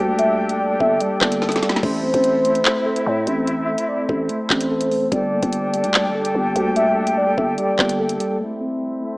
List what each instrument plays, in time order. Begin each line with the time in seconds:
Already playing: tine electric piano G3 A4, flute section D4 G4 A4 G5
0.00 808-style bass D2, tine electric piano A#3
0.19 soft synth lead E5, closed hi-hat
0.49 closed hi-hat
0.60 soft synth lead D5
0.80 808-style bass G1, tine electric piano A4, soft synth lead E5, kick
1.00 tine electric piano G3, soft synth lead D5, closed hi-hat
1.21 808-style bass G1, tine electric piano A#3, kick, cross-stick, clap
1.32 closed hi-hat
1.42 tine electric piano A4, snare
1.49 snare, closed hi-hat
1.56 snare
1.62 tine electric piano G3, snare, closed hi-hat
1.69 snare
1.76 snare
1.83 808-style bass A1, tine electric piano A3, flute section C4 E4 E5, soft synth lead C5, kick, crash
2.03 tine electric piano C4
2.14 808-style bass A1, kick, closed hi-hat
2.24 closed hi-hat
2.45 tine electric piano A3, closed hi-hat
2.55 closed hi-hat
2.65 clap
2.86 tine electric piano A4
2.96 closed hi-hat
3.06 808-style bass A2, tine electric piano A3
3.27 808-style bass A1, tine electric piano C4, closed hi-hat
3.47 soft synth lead E5, closed hi-hat
3.78 closed hi-hat
3.88 soft synth lead D5
4.09 808-style bass A1, tine electric piano A4, soft synth lead C5, kick
4.29 tine electric piano A3, closed hi-hat
4.50 808-style bass A1, tine electric piano C4, kick, clap
4.61 closed hi-hat
4.71 tine electric piano A4
4.81 closed hi-hat
4.91 tine electric piano A3, open hi-hat
5.12 808-style bass G1, tine electric piano G3, flute section D4 G4 A4 G5, soft synth lead D5, kick, closed hi-hat
5.32 tine electric piano A#3
5.43 808-style bass G1, kick, closed hi-hat
5.53 closed hi-hat
5.74 tine electric piano G3, closed hi-hat
5.84 808-style bass D2, closed hi-hat
5.94 clap
6.09 808-style bass G1
6.15 tine electric piano A4
6.25 closed hi-hat
6.35 808-style bass G1, tine electric piano G3
6.56 808-style bass D2, tine electric piano A#3, closed hi-hat
6.76 soft synth lead E5, closed hi-hat
7.07 closed hi-hat
7.17 soft synth lead D5
7.38 808-style bass G1, tine electric piano A4, soft synth lead E5, kick
7.58 tine electric piano G3, soft synth lead D5, closed hi-hat
7.79 808-style bass G1, tine electric piano A#3, kick, cross-stick, clap
7.89 closed hi-hat
8.00 tine electric piano A4
8.09 closed hi-hat
8.20 tine electric piano G3, closed hi-hat
8.40 tine electric piano A3, flute section C4 E4 A4 E5
8.61 tine electric piano C4
9.02 tine electric piano A3